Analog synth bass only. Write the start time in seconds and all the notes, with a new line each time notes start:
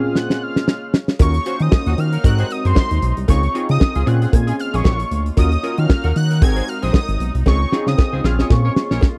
1.20 D#2
1.60 D#3
1.86 D#2
1.98 D#3
2.24 G#2
2.65 F#2
2.91 D#2
3.03 B1
3.17 C2
3.29 C#2
3.70 C#3
3.96 C#2
4.07 A#2
4.33 A#2
4.74 A#1
4.85 A#1
5.11 D2
5.37 D#2
5.78 D#3
6.04 D#2
6.16 D#3
6.42 G#1
6.83 A#1
7.09 G#1
7.20 B1
7.35 C2
7.46 C#2
7.87 C#3
8.13 C#2
8.24 A#1
8.51 A#2
8.91 A#1